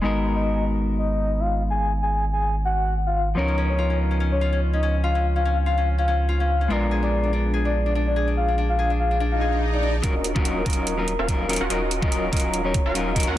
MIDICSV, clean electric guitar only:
0, 0, Header, 1, 2, 480
1, 0, Start_track
1, 0, Key_signature, -6, "minor"
1, 0, Tempo, 416667
1, 41, Time_signature, 4, 2, 24, 8
1, 15414, End_track
2, 0, Start_track
2, 0, Title_t, "Clean electric guitar"
2, 0, Program_c, 0, 27
2, 18, Note_on_c, 0, 56, 69
2, 29, Note_on_c, 0, 59, 66
2, 41, Note_on_c, 0, 63, 64
2, 53, Note_on_c, 0, 66, 65
2, 64, Note_on_c, 0, 70, 79
2, 3844, Note_off_c, 0, 56, 0
2, 3849, Note_off_c, 0, 59, 0
2, 3855, Note_off_c, 0, 63, 0
2, 3858, Note_on_c, 0, 53, 72
2, 3861, Note_off_c, 0, 66, 0
2, 3867, Note_off_c, 0, 70, 0
2, 3869, Note_on_c, 0, 59, 62
2, 3881, Note_on_c, 0, 61, 66
2, 3892, Note_on_c, 0, 63, 64
2, 3904, Note_on_c, 0, 70, 78
2, 7683, Note_off_c, 0, 53, 0
2, 7689, Note_off_c, 0, 59, 0
2, 7695, Note_off_c, 0, 61, 0
2, 7698, Note_on_c, 0, 56, 72
2, 7701, Note_off_c, 0, 63, 0
2, 7706, Note_off_c, 0, 70, 0
2, 7709, Note_on_c, 0, 59, 66
2, 7720, Note_on_c, 0, 62, 66
2, 7732, Note_on_c, 0, 65, 67
2, 7744, Note_on_c, 0, 70, 78
2, 11523, Note_off_c, 0, 56, 0
2, 11529, Note_off_c, 0, 59, 0
2, 11535, Note_off_c, 0, 62, 0
2, 11540, Note_off_c, 0, 65, 0
2, 11546, Note_off_c, 0, 70, 0
2, 11548, Note_on_c, 0, 54, 83
2, 11554, Note_on_c, 0, 61, 79
2, 11559, Note_on_c, 0, 63, 78
2, 11565, Note_on_c, 0, 65, 79
2, 11571, Note_on_c, 0, 70, 95
2, 11671, Note_off_c, 0, 54, 0
2, 11674, Note_off_c, 0, 61, 0
2, 11677, Note_off_c, 0, 63, 0
2, 11680, Note_off_c, 0, 65, 0
2, 11683, Note_off_c, 0, 70, 0
2, 11919, Note_on_c, 0, 54, 88
2, 11925, Note_on_c, 0, 61, 85
2, 11931, Note_on_c, 0, 63, 85
2, 11936, Note_on_c, 0, 65, 85
2, 11943, Note_on_c, 0, 70, 98
2, 12248, Note_off_c, 0, 54, 0
2, 12251, Note_off_c, 0, 61, 0
2, 12254, Note_off_c, 0, 63, 0
2, 12257, Note_off_c, 0, 65, 0
2, 12260, Note_off_c, 0, 70, 0
2, 12267, Note_on_c, 0, 54, 76
2, 12273, Note_on_c, 0, 61, 72
2, 12279, Note_on_c, 0, 63, 70
2, 12285, Note_on_c, 0, 65, 69
2, 12291, Note_on_c, 0, 70, 84
2, 12614, Note_off_c, 0, 54, 0
2, 12617, Note_off_c, 0, 61, 0
2, 12620, Note_off_c, 0, 63, 0
2, 12623, Note_off_c, 0, 65, 0
2, 12626, Note_off_c, 0, 70, 0
2, 12640, Note_on_c, 0, 54, 77
2, 12645, Note_on_c, 0, 61, 69
2, 12651, Note_on_c, 0, 63, 67
2, 12657, Note_on_c, 0, 65, 68
2, 12663, Note_on_c, 0, 70, 84
2, 12809, Note_off_c, 0, 54, 0
2, 12812, Note_off_c, 0, 61, 0
2, 12815, Note_off_c, 0, 63, 0
2, 12818, Note_off_c, 0, 65, 0
2, 12821, Note_off_c, 0, 70, 0
2, 12988, Note_on_c, 0, 54, 86
2, 12995, Note_on_c, 0, 61, 81
2, 13000, Note_on_c, 0, 63, 79
2, 13006, Note_on_c, 0, 65, 84
2, 13011, Note_on_c, 0, 70, 97
2, 13208, Note_off_c, 0, 54, 0
2, 13212, Note_off_c, 0, 61, 0
2, 13214, Note_off_c, 0, 63, 0
2, 13217, Note_off_c, 0, 65, 0
2, 13220, Note_off_c, 0, 70, 0
2, 13228, Note_on_c, 0, 54, 92
2, 13234, Note_on_c, 0, 61, 88
2, 13240, Note_on_c, 0, 63, 86
2, 13246, Note_on_c, 0, 65, 85
2, 13252, Note_on_c, 0, 70, 101
2, 13351, Note_off_c, 0, 54, 0
2, 13354, Note_off_c, 0, 61, 0
2, 13357, Note_off_c, 0, 63, 0
2, 13360, Note_off_c, 0, 65, 0
2, 13363, Note_off_c, 0, 70, 0
2, 13469, Note_on_c, 0, 54, 84
2, 13475, Note_on_c, 0, 61, 81
2, 13480, Note_on_c, 0, 63, 81
2, 13486, Note_on_c, 0, 65, 81
2, 13493, Note_on_c, 0, 70, 97
2, 13592, Note_off_c, 0, 54, 0
2, 13594, Note_off_c, 0, 61, 0
2, 13597, Note_off_c, 0, 63, 0
2, 13600, Note_off_c, 0, 65, 0
2, 13603, Note_off_c, 0, 70, 0
2, 13841, Note_on_c, 0, 54, 95
2, 13847, Note_on_c, 0, 61, 86
2, 13853, Note_on_c, 0, 63, 87
2, 13858, Note_on_c, 0, 65, 86
2, 13864, Note_on_c, 0, 70, 100
2, 14169, Note_off_c, 0, 54, 0
2, 14172, Note_off_c, 0, 61, 0
2, 14175, Note_off_c, 0, 63, 0
2, 14178, Note_off_c, 0, 65, 0
2, 14180, Note_off_c, 0, 70, 0
2, 14188, Note_on_c, 0, 54, 78
2, 14194, Note_on_c, 0, 61, 70
2, 14200, Note_on_c, 0, 63, 68
2, 14205, Note_on_c, 0, 65, 68
2, 14211, Note_on_c, 0, 70, 86
2, 14535, Note_off_c, 0, 54, 0
2, 14537, Note_off_c, 0, 61, 0
2, 14541, Note_off_c, 0, 63, 0
2, 14543, Note_off_c, 0, 65, 0
2, 14546, Note_off_c, 0, 70, 0
2, 14561, Note_on_c, 0, 54, 74
2, 14566, Note_on_c, 0, 61, 70
2, 14572, Note_on_c, 0, 63, 71
2, 14578, Note_on_c, 0, 65, 69
2, 14584, Note_on_c, 0, 70, 83
2, 14730, Note_off_c, 0, 54, 0
2, 14733, Note_off_c, 0, 61, 0
2, 14736, Note_off_c, 0, 63, 0
2, 14738, Note_off_c, 0, 65, 0
2, 14741, Note_off_c, 0, 70, 0
2, 14908, Note_on_c, 0, 54, 89
2, 14914, Note_on_c, 0, 61, 81
2, 14920, Note_on_c, 0, 63, 82
2, 14926, Note_on_c, 0, 65, 80
2, 14931, Note_on_c, 0, 70, 96
2, 15129, Note_off_c, 0, 54, 0
2, 15132, Note_off_c, 0, 61, 0
2, 15134, Note_off_c, 0, 63, 0
2, 15137, Note_off_c, 0, 65, 0
2, 15140, Note_off_c, 0, 70, 0
2, 15149, Note_on_c, 0, 54, 94
2, 15154, Note_on_c, 0, 61, 87
2, 15160, Note_on_c, 0, 63, 89
2, 15166, Note_on_c, 0, 65, 91
2, 15172, Note_on_c, 0, 70, 107
2, 15271, Note_off_c, 0, 54, 0
2, 15274, Note_off_c, 0, 61, 0
2, 15277, Note_off_c, 0, 63, 0
2, 15280, Note_off_c, 0, 65, 0
2, 15283, Note_off_c, 0, 70, 0
2, 15414, End_track
0, 0, End_of_file